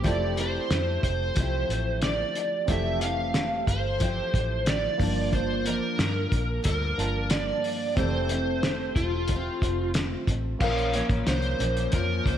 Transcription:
0.02 fingered electric bass F1, steel-string acoustic guitar F3 A3 E4 G4, synth keys C4 E4 G4, electric slide guitar D5, kick, closed hi-hat
0.07 synth keys A4
0.35 steel-string acoustic guitar A3 E4 G4, electric slide guitar C5, closed hi-hat
0.70 fingered electric bass F2, snare, closed hi-hat
1.03 fingered electric bass F1, electric slide guitar C5, kick, closed hi-hat
1.34 fingered electric bass C2, steel-string acoustic guitar F3 A3, kick, closed hi-hat
1.39 steel-string acoustic guitar E4 G4
1.69 fingered electric bass A1, closed hi-hat
2.02 electric slide guitar D5, snare, closed hi-hat
2.35 closed hi-hat
2.66 fingered electric bass F1, synth keys E3 C4 G4, steel-string acoustic guitar F3 A3 E4 G4, electric slide guitar E5, kick, closed hi-hat
2.71 synth keys A4
3.01 steel-string acoustic guitar A3 G4, electric slide guitar F5, closed hi-hat
3.34 snare, closed hi-hat
3.67 fingered electric bass G1, electric slide guitar C5, kick, closed hi-hat
3.99 steel-string acoustic guitar F3 A3 E4 G4, kick, closed hi-hat
4.34 fingered electric bass A1, kick, closed hi-hat
4.66 electric slide guitar D5, snare, closed hi-hat
4.98 fingered electric bass G1, steel-string acoustic guitar F3 A#3 D4, synth keys A#3 D4 F4, kick, open hi-hat
5.02 steel-string acoustic guitar G2, synth keys A5
5.33 electric slide guitar C5, kick, closed hi-hat
5.65 steel-string acoustic guitar F3 A#3 D4, electric slide guitar A#4, closed hi-hat
5.99 fingered electric bass G2, snare, closed hi-hat
6.32 fingered electric bass A#1, kick, closed hi-hat
6.63 fingered electric bass D2, steel-string acoustic guitar G2 F3, electric slide guitar A#4, kick, closed hi-hat
6.68 steel-string acoustic guitar A#3 D4
6.98 fingered electric bass G1, synth keys A#3 D4 F4 A5, closed hi-hat
7.30 electric slide guitar D5, snare, closed hi-hat
7.64 open hi-hat
7.95 fingered electric bass F1, steel-string acoustic guitar F2 E3 A3, synth keys C4 G4 E5, electric slide guitar C5, kick, closed hi-hat
7.99 steel-string acoustic guitar C4, synth keys A4
8.29 steel-string acoustic guitar A3 C4, closed hi-hat
8.63 snare, closed hi-hat
8.96 fingered electric bass E1, electric slide guitar F4, kick, closed hi-hat
9.28 kick, closed hi-hat
9.34 steel-string acoustic guitar A3 C4
9.62 fingered electric bass F1, kick, closed hi-hat
9.94 snare, closed hi-hat
10.27 fingered electric bass A1, kick, closed hi-hat
10.59 fingered electric bass A#1, steel-string acoustic guitar A#2 F3, synth keys A#3 C#4 F4, electric slide guitar F5, kick, crash
10.63 steel-string acoustic guitar A#3 C#4, synth keys A#4
10.78 closed hi-hat
10.92 steel-string acoustic guitar A#3 C#4, electric slide guitar C#5, closed hi-hat
10.97 steel-string acoustic guitar F3
11.09 fingered electric bass A1, kick, closed hi-hat
11.27 fingered electric bass C2, electric slide guitar C5, snare, closed hi-hat
11.42 closed hi-hat
11.59 fingered electric bass A#1, steel-string acoustic guitar F3 A#3 C#4, closed hi-hat
11.77 closed hi-hat
11.92 fingered electric bass F2, steel-string acoustic guitar F3 A#3, electric slide guitar A#4, kick, closed hi-hat
11.96 steel-string acoustic guitar C#4
12.26 fingered electric bass C#2, electric slide guitar C5, kick, closed hi-hat

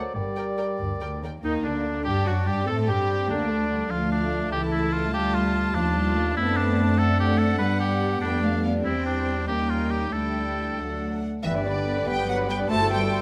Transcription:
Already playing: bassoon F#3, clarinet C5, oboe D5
0.14 double bass section G1, cello section G2, french horn section G3, bassoon G3, clarinet A#4, oboe D5
0.37 viola section A#4, violin section D5 G5
0.58 viola section A#4, violin section D5 G5
0.79 double bass section D2, cello section G2
1.00 cello section D2, viola section A#4, violin section D5 G5
1.22 cello section D#2, viola section A#4, violin section D5 G5
1.43 double bass section D#2, viola section D#3, french horn section D#3, cello section A#3, violin section D#4, oboe D#4
1.64 double bass section D2, viola section D3, french horn section D3, oboe D4, violin section D4
2.05 double bass section G2, viola section G3, french horn section G3, cello section D4, violin section G4, oboe G4
2.26 double bass section F#2, viola section F#3, french horn section F#3, violin section F#4, oboe F#4
2.46 double bass section G2, viola section G3, french horn section G3, violin section G4, oboe G4
2.66 double bass section A2, viola section A3, french horn section A3, cello section C4, oboe A4, violin section A4
2.87 double bass section G2, viola section G3, french horn section G3, violin section G4, oboe G4
3.28 double bass section D2, french horn section D3, viola section D3, cello section A#3, violin section D4, oboe D4
3.49 cello section A3
3.69 cello section G3
3.90 double bass section D2, cello section F3, viola section A3, french horn section A3 F4, violin section D4 F5, oboe F4
4.12 oboe D4
4.51 double bass section C#2, cello section E3, viola section A3, violin section E4 A5, french horn section E4, oboe G4
4.72 oboe E4
4.93 oboe F4
5.12 double bass section D2, cello section G3, viola section G3, violin section F4, french horn section F4, oboe G4
5.34 oboe F4
5.74 double bass section D#2, cello section F3, viola section F3, oboe D4, violin section F4
5.94 cello section G3
6.15 cello section A3
6.35 double bass section F#2, viola section A3, french horn section A3 C4, cello section B3, violin section D4 A5, oboe E4
6.57 oboe D4
6.99 cello section A3, viola section A3, oboe A4, violin section F#5
7.20 oboe G4
7.38 oboe A4
7.58 double bass section G2, viola section G3, cello section G3, french horn section G3 B3, oboe B4
7.80 oboe G4
8.21 double bass section F2, viola section A3, cello section B3, oboe D4, violin section D4 G5
8.43 cello section A3, violin section F5
8.63 cello section B3, violin section F5
8.84 double bass section E2, viola section G3, cello section C4, violin section C4 G5, french horn section C4, oboe E4
9.06 oboe D4
9.48 double bass section D#2, viola section G3, cello section A#3, french horn section C#4, violin section D#4 G5, oboe G4
9.70 oboe F4
9.91 oboe G4
10.12 double bass section D2, french horn section G3 D4, viola section G3, cello section A3, violin section E4 G5, oboe A4
10.78 double bass section D2, french horn section F#3, viola section A3, violin section D4 F#5
11.43 double bass section G1, french horn section E3, cello section E3, bassoon G3, viola section B3 B4, clarinet G4, violin section B4 E5, oboe B4, flute E5
11.55 viola section D4 D5
11.64 cello section D3, french horn section D3, viola section B3 B4, flute D5, violin section D5
11.76 viola section D4 D5
11.87 viola section B3 B4
11.97 viola section D4 D5
12.07 double bass section G1, cello section G3, french horn section G3, bassoon B3, viola section B3 B4, flute G5, violin section G5
12.19 viola section D4 D5
12.27 cello section F#3, french horn section F#3, viola section B3 B4, flute F#5, violin section F#5
12.39 viola section D4 D5
12.48 cello section G3, french horn section G3, viola section B3 B4, flute G5, violin section G5
12.59 viola section D4 D5
12.68 double bass section G1, cello section A3, french horn section A3, bassoon A3, clarinet F#4, viola section G4 C5, violin section A4 A5, oboe A4, flute A5
12.81 viola section E4 A4
12.89 cello section G3, french horn section G3, viola section G4 C5, flute G5, violin section G5
13.01 viola section E4 A4
13.11 viola section G4 C5

